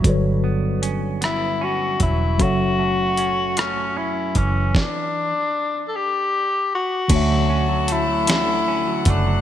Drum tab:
CC |------|------|------|x-----|
HH |x-xx-x|x-xx-x|------|x-xx-x|
SD |---r--|---r--|o-----|---o--|
BD |o----o|o----o|o-----|o----o|